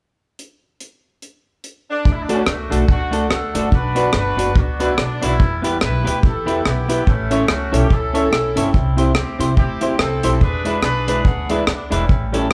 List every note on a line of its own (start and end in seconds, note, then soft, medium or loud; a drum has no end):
0.39 closed hi-hat medium
0.80 closed hi-hat medium
1.22 closed hi-hat medium
1.64 closed hi-hat medium
1.90 2.11 D4 loud
2.05 2.41 D2 medium
2.05 kick loud
2.12 2.23 E4 medium
2.23 2.32 D4 medium
2.29 2.42 A3 medium
2.29 2.41 D4 medium
2.29 2.43 D4 medium
2.29 2.41 F#4 medium
2.29 2.43 F#4 medium
2.29 2.41 A4 medium
2.29 2.43 A4 loud
2.29 2.42 D5 loud
2.29 closed hi-hat medium
2.34 2.41 C#4 medium
2.41 2.47 D4 medium
2.47 2.68 C#2 medium
2.47 2.89 A3 medium
2.47 2.89 D4 medium
2.47 2.90 F#4 loud
2.47 cross-stick loud
2.70 2.87 B1 medium
2.70 2.84 A3 medium
2.70 2.82 D4 medium
2.70 2.84 D4 medium
2.70 2.83 F#4 medium
2.70 2.85 F#4 medium
2.70 2.83 A4 medium
2.70 2.85 A4 medium
2.70 2.83 D5 medium
2.70 closed hi-hat medium
2.89 3.24 C#2 medium
2.89 3.69 A3 medium
2.89 3.31 D4 medium
2.89 3.29 F#4 loud
2.89 kick loud
3.11 3.25 A3 medium
3.11 3.24 D4 medium
3.11 3.26 D4 medium
3.11 3.26 F#4 medium
3.11 3.25 F#4 medium
3.11 3.25 A4 medium
3.11 3.26 A4 medium
3.11 3.25 D5 loud
3.11 closed hi-hat medium
3.31 3.52 D2 medium
3.31 3.70 D4 medium
3.31 3.71 F#4 medium
3.31 3.71 A4 medium
3.31 cross-stick loud
3.54 3.70 F#1 medium
3.54 3.68 A3 medium
3.54 3.66 D4 medium
3.54 3.68 D4 medium
3.54 3.66 F#4 medium
3.54 3.69 F#4 loud
3.54 3.67 A4 medium
3.54 3.69 A4 medium
3.54 3.67 D5 medium
3.54 closed hi-hat loud
3.72 4.08 B1 medium
3.72 4.15 D4 medium
3.72 4.15 F#4 medium
3.72 4.15 B4 loud
3.72 kick loud
3.95 4.09 B3 medium
3.95 4.10 D4 medium
3.95 4.08 D4 medium
3.95 4.09 F#4 loud
3.95 4.09 F#4 medium
3.95 4.09 B4 medium
3.95 4.10 B4 loud
3.95 4.09 D5 medium
3.95 closed hi-hat medium
4.13 4.35 G1 loud
4.13 4.56 D4 medium
4.13 4.57 F#4 medium
4.13 cross-stick loud
4.17 4.55 B4 loud
4.37 4.54 F#1 medium
4.37 4.51 B3 medium
4.37 4.51 D4 medium
4.37 4.50 D4 medium
4.37 4.51 F#4 medium
4.37 4.50 F#4 medium
4.37 4.52 B4 medium
4.37 4.50 B4 medium
4.37 4.51 D5 medium
4.37 closed hi-hat medium
4.55 4.91 C#2 medium
4.55 5.23 B3 medium
4.55 4.99 D4 medium
4.55 4.82 F#4 loud
4.55 kick loud
4.80 4.93 B3 medium
4.80 4.93 D4 medium
4.80 4.92 D4 medium
4.80 4.99 E4 medium
4.80 4.92 F#4 medium
4.80 4.94 F#4 loud
4.80 4.94 B4 medium
4.80 4.92 B4 medium
4.80 4.93 D5 loud
4.80 closed hi-hat medium
4.98 5.19 B1 medium
4.98 5.24 D4 loud
4.98 cross-stick loud
5.21 5.38 B1 medium
5.21 6.03 G3 medium
5.21 5.35 B3 medium
5.21 6.03 B3 medium
5.21 5.35 D4 medium
5.21 5.34 D4 medium
5.21 5.62 E4 loud
5.21 5.36 F#4 medium
5.21 5.34 F#4 medium
5.21 5.34 B4 medium
5.21 5.36 B4 medium
5.21 5.35 D5 medium
5.21 closed hi-hat loud
5.40 5.84 E2 medium
5.40 kick loud
5.62 5.76 B3 medium
5.62 5.77 E4 medium
5.62 5.76 E4 medium
5.62 5.77 G4 loud
5.62 5.76 G4 medium
5.62 5.77 B4 loud
5.62 5.76 B4 medium
5.62 5.76 E5 loud
5.62 closed hi-hat medium
5.81 6.03 B1 medium
5.81 6.24 E4 medium
5.81 6.62 G4 medium
5.81 6.21 B4 loud
5.81 cross-stick loud
6.04 6.21 D2 medium
6.04 6.18 B3 medium
6.04 6.18 E4 medium
6.04 6.17 E4 medium
6.04 6.19 G4 medium
6.04 6.18 G4 medium
6.04 6.19 B4 medium
6.04 6.18 B4 medium
6.04 6.18 E5 medium
6.04 closed hi-hat medium
6.23 6.59 E2 medium
6.23 6.66 E4 medium
6.23 6.66 A4 medium
6.23 kick loud
6.46 6.60 B3 medium
6.46 6.60 E4 medium
6.46 6.59 E4 medium
6.46 6.60 G4 medium
6.46 6.61 B4 loud
6.46 6.60 B4 medium
6.46 6.60 E5 loud
6.46 closed hi-hat medium
6.65 7.01 B1 medium
6.65 7.05 B3 medium
6.65 7.05 E4 medium
6.65 7.08 G4 loud
6.65 cross-stick loud
6.88 7.02 B3 medium
6.88 7.01 E4 medium
6.88 7.02 E4 medium
6.88 7.02 G4 medium
6.88 7.01 G4 medium
6.88 7.01 B4 medium
6.88 7.03 B4 medium
6.88 7.02 E5 medium
6.88 closed hi-hat loud
7.07 7.42 A1 loud
7.07 7.87 A3 medium
7.07 7.87 C#4 medium
7.07 7.50 E4 loud
7.07 kick loud
7.30 7.44 C#4 medium
7.30 7.43 E4 medium
7.30 7.45 E4 medium
7.30 7.43 A4 medium
7.30 7.45 A4 medium
7.30 7.43 C#5 medium
7.30 7.45 C#5 loud
7.30 7.43 E5 loud
7.30 closed hi-hat medium
7.48 7.70 C#2 medium
7.48 7.74 F#4 medium
7.48 cross-stick loud
7.72 7.88 B1 medium
7.72 7.86 C#4 medium
7.72 7.86 E4 medium
7.72 7.85 E4 medium
7.72 7.86 A4 medium
7.72 7.85 A4 medium
7.72 7.85 C#5 medium
7.72 7.87 C#5 medium
7.72 7.85 E5 medium
7.72 closed hi-hat medium
7.76 7.92 G4 medium
7.90 8.71 C#4 medium
7.90 8.58 E4 medium
7.90 8.58 A4 loud
7.90 kick loud
8.13 8.27 C#4 medium
8.13 8.28 E4 medium
8.13 8.26 E4 medium
8.13 8.28 A4 medium
8.13 8.26 A4 medium
8.13 8.28 C#5 medium
8.13 8.27 C#5 medium
8.13 8.27 E5 loud
8.13 closed hi-hat medium
8.32 8.53 B1 medium
8.32 cross-stick loud
8.56 8.71 G1 loud
8.56 9.37 G3 medium
8.56 9.16 C4 medium
8.56 8.69 C#4 medium
8.56 8.70 E4 medium
8.56 8.69 E4 medium
8.56 9.16 E4 medium
8.56 8.70 A4 loud
8.56 8.69 A4 medium
8.56 8.69 C#5 medium
8.56 8.70 C#5 medium
8.56 8.69 E5 medium
8.56 closed hi-hat medium
8.74 9.10 C2 loud
8.74 kick medium
8.97 9.11 C4 medium
8.97 9.11 E4 medium
8.97 9.10 E4 medium
8.97 9.11 G4 medium
8.97 9.10 G4 medium
8.97 9.12 C5 medium
8.97 9.11 C5 medium
8.97 9.11 E5 loud
8.97 closed hi-hat medium
9.15 9.37 D2 medium
9.15 9.57 C4 medium
9.15 9.57 E4 medium
9.15 9.56 G4 medium
9.15 cross-stick loud
9.39 9.55 C2 medium
9.39 9.53 C4 medium
9.39 9.53 E4 medium
9.39 9.52 E4 medium
9.39 9.53 G4 medium
9.39 9.52 G4 medium
9.39 9.54 C5 medium
9.39 9.53 C5 medium
9.39 9.53 E5 medium
9.39 closed hi-hat loud
9.57 9.93 D2 medium
9.57 9.99 C4 medium
9.57 9.98 E4 medium
9.57 9.97 G4 medium
9.57 kick loud
9.81 9.95 C4 medium
9.81 9.95 E4 medium
9.81 9.94 E4 loud
9.81 9.95 G4 medium
9.81 9.94 G4 medium
9.81 9.95 C5 medium
9.81 9.94 C5 medium
9.81 9.94 E5 loud
9.81 closed hi-hat medium
9.99 10.20 C2 medium
9.99 10.39 C4 medium
9.99 10.39 E4 medium
9.99 10.39 A4 loud
9.99 cross-stick loud
10.23 10.39 B1 medium
10.23 10.37 C4 medium
10.23 10.37 E4 medium
10.23 10.36 E4 medium
10.23 10.37 G4 medium
10.23 10.36 G4 medium
10.23 10.37 C5 loud
10.23 10.36 C5 medium
10.23 10.36 E5 medium
10.23 closed hi-hat loud
10.41 10.77 E2 medium
10.41 10.83 D4 medium
10.41 10.83 G#4 medium
10.41 10.81 B4 loud
10.41 kick loud
10.64 10.78 G#3 medium
10.64 10.79 D4 medium
10.64 10.79 E4 medium
10.64 10.78 E4 medium
10.64 10.78 G#4 medium
10.64 10.79 B4 loud
10.64 10.78 B4 medium
10.64 10.78 D5 loud
10.64 closed hi-hat medium
10.83 11.19 B1 medium
10.83 11.25 D4 medium
10.83 11.64 G#4 medium
10.83 11.23 B4 loud
10.83 cross-stick loud
11.07 11.21 G#3 medium
11.07 11.21 D4 medium
11.07 11.20 E4 medium
11.07 11.21 E4 medium
11.07 11.20 G#4 medium
11.07 11.20 B4 medium
11.07 11.22 B4 medium
11.07 11.20 D5 medium
11.07 closed hi-hat medium
11.25 11.61 D2 medium
11.25 12.06 B3 medium
11.25 11.66 D4 medium
11.25 11.50 F#4 medium
11.25 kick loud
11.49 11.63 G#3 medium
11.49 11.63 D4 medium
11.49 11.67 E4 medium
11.49 11.62 E4 medium
11.49 11.64 E4 loud
11.49 11.62 G#4 medium
11.49 11.62 B4 medium
11.49 11.64 B4 loud
11.49 11.62 D5 loud
11.49 closed hi-hat medium
11.67 11.88 C#2 medium
11.67 11.90 D4 medium
11.67 cross-stick loud
11.90 12.07 E1 medium
11.90 12.53 G3 medium
11.90 12.04 G#3 medium
11.90 12.53 C#4 medium
11.90 12.04 D4 medium
11.90 12.04 E4 loud
11.90 12.03 E4 medium
11.90 12.24 E4 medium
11.90 12.03 G#4 medium
11.90 12.04 B4 medium
11.90 12.05 B4 loud
11.90 12.04 D5 medium
11.90 closed hi-hat loud
12.09 12.45 A1 loud
12.09 kick loud
12.32 12.46 G3 medium
12.32 12.47 C#4 medium
12.32 12.45 E4 loud
12.32 12.47 E4 medium
12.32 12.45 G4 medium
12.32 12.46 A4 medium
12.32 12.47 A4 medium
12.32 12.46 C#5 loud
12.32 closed hi-hat medium